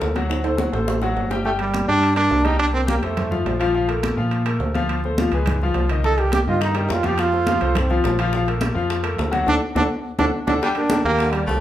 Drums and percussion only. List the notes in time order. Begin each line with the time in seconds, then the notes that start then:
0.01 high bongo, low bongo, high conga, low timbale
0.16 high conga, high timbale
0.30 high bongo, high conga, high timbale
0.44 high bongo, high conga, high timbale
0.58 high bongo, high conga, high timbale
0.73 high conga, low timbale
0.88 high bongo, high conga, low timbale
1.02 low bongo, high conga, low timbale
1.16 high conga, low timbale
1.30 low bongo, high conga, low timbale
1.45 high conga
1.59 high conga, high timbale
1.74 high conga, high timbale, low timbale
2.03 high conga, high timbale
2.16 high conga, high timbale
2.31 high conga, low timbale
2.45 high conga, high timbale
2.59 high conga, high timbale
2.74 high conga
2.88 high conga, high timbale, low timbale
3.03 high conga, high timbale
3.17 high conga, low conga, high timbale
3.32 high conga, low conga
3.46 high conga, high timbale, low timbale
3.61 high conga, high timbale
3.75 high conga
3.89 high conga, high timbale
4.03 high conga, high timbale, low timbale
4.31 high conga, high timbale
4.46 high conga, high timbale
4.60 high conga, low timbale
4.75 high conga, high timbale
4.89 high conga, high timbale
5.04 high conga
5.18 high conga, high timbale, low timbale
5.32 high conga, high timbale
5.46 high conga, low conga, high timbale
5.61 high conga
5.74 high conga, high timbale, low timbale
5.89 high conga, high timbale
6.04 high bongo, high conga
6.18 high conga, high timbale
6.32 high bongo, high conga, high timbale, low timbale
6.61 high bongo, high conga, high timbale
6.75 high conga, high timbale
6.89 high bongo, low bongo, high conga, low timbale
7.03 high conga, high timbale
7.18 high bongo, high conga, high timbale
7.32 high bongo, high conga
7.47 high bongo, high conga, high timbale, low timbale
7.61 high conga, high timbale
7.75 high bongo, high conga, low conga, high timbale
7.90 high bongo, high conga
8.04 high bongo, low bongo, high conga, high timbale, low timbale
8.19 high bongo, high conga, high timbale
8.32 high bongo, high conga
8.47 high conga, high timbale
8.61 high bongo, high conga, high timbale, low timbale
8.90 high bongo, high conga, high timbale
9.04 high conga, high timbale
9.18 high bongo, low bongo, high conga, low timbale
9.33 high conga, high timbale
9.46 low bongo, high conga, high timbale
9.76 low bongo, high conga, high timbale
10.19 low bongo, high conga, high timbale
10.47 low bongo, high conga, high timbale
10.62 high bongo, high conga
10.75 high bongo, high conga, high timbale
10.90 high bongo, high conga, high timbale, low timbale
11.05 high bongo, high conga
11.19 high bongo, high conga, high timbale
11.33 high bongo, high conga, high timbale
11.48 high bongo, low bongo, high conga, low timbale